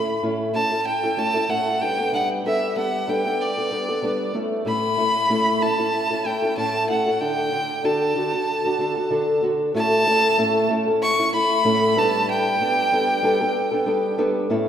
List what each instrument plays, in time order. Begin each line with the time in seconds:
Already playing: nylon-string guitar A3 C#4 E4 A4, violin B5
0.22 nylon-string guitar A2 A3 C#4 E4 A4
0.54 nylon-string guitar A3 C#4 E4 A4, violin A5
0.72 nylon-string guitar C#4 E4 A4
0.86 violin G5
1.04 nylon-string guitar C#4 E4 A4
1.17 nylon-string guitar A3 C#4 E4 A4, violin A5
1.34 nylon-string guitar C#4 E4 A4
1.49 nylon-string guitar A2 A3 C#4 E4 A4, violin F#5
1.81 nylon-string guitar G3 B3 D4 A4, violin G5
1.99 nylon-string guitar B3 D4 A4
2.13 nylon-string guitar G3 B3 D4 A4, violin F#5
2.44 nylon-string guitar G3 B3 D4 A4, violin E5
2.76 nylon-string guitar G3 B3 D4 A4, violin F#5
3.08 nylon-string guitar G3 B3 D4 A4, violin G5
3.25 nylon-string guitar B3 D4 A4
3.41 violin D5
3.57 nylon-string guitar B3 D4 A4
3.71 nylon-string guitar G3 B3 D4 A4
3.89 nylon-string guitar B3 D4 A4
4.02 nylon-string guitar G3 B3 D4 A4
4.33 nylon-string guitar A3 C#4 E4 A4
4.65 nylon-string guitar A2 A3 C#4 E4 A4, violin B5
4.97 nylon-string guitar A3 C#4 E4 A4
5.29 nylon-string guitar A2 A3 C#4 E4 A4
5.61 nylon-string guitar A3 C#4 E4 A4, violin A5
5.78 nylon-string guitar C#4 E4 A4
6.11 nylon-string guitar C#4 E4 A4
6.25 nylon-string guitar A3 C#4 E4 A4, violin G5
6.42 nylon-string guitar C#4 E4 A4
6.57 nylon-string guitar A2 A3 C#4 E4 A4, violin A5
6.89 nylon-string guitar A3 C#4 E4 A4, violin F#5
7.06 nylon-string guitar C#4 E4 A4
7.21 nylon-string guitar D3 D4 A4, violin G5
7.52 nylon-string guitar D3 D4 A4
7.84 nylon-string guitar D3 D4 F#4 A4, violin A5
8.15 nylon-string guitar D3 D4 F#4 A4
8.32 nylon-string guitar D4 F#4 A4
8.65 nylon-string guitar D4 F#4 A4
8.79 nylon-string guitar D3 D4 F#4 A4
8.96 nylon-string guitar D4 F#4 A4
9.10 nylon-string guitar D3 D4 F#4 A4
9.42 nylon-string guitar D3 D4 F#4 A4
9.74 nylon-string guitar A2 A3 C#4 E4 A4, violin A5
10.05 nylon-string guitar A3 C#4 E4 A4
10.38 nylon-string guitar A2 A3 C#4 E4 A4
10.69 nylon-string guitar A3 C#4 E4 A4
10.88 nylon-string guitar C#4 E4 A4
11.03 violin C#6
11.18 nylon-string guitar C#4 E4 A4
11.32 nylon-string guitar A3 C#4 E4 A4, violin B5
11.64 nylon-string guitar A2 A3 C#4 E4 A4
11.96 nylon-string guitar G3 B3 D4 A4, violin A5
12.30 violin G5
12.60 nylon-string guitar G3 B3 D4 A4
12.92 nylon-string guitar G3 B3 D4 A4
13.23 nylon-string guitar G3 B3 D4 A4
13.41 nylon-string guitar B3 D4 A4
13.71 nylon-string guitar B3 D4 A4
13.86 nylon-string guitar G3 B3 D4 A4
14.18 nylon-string guitar G3 B3 D4 A4
14.50 nylon-string guitar A2 A3 C#4 E4 A4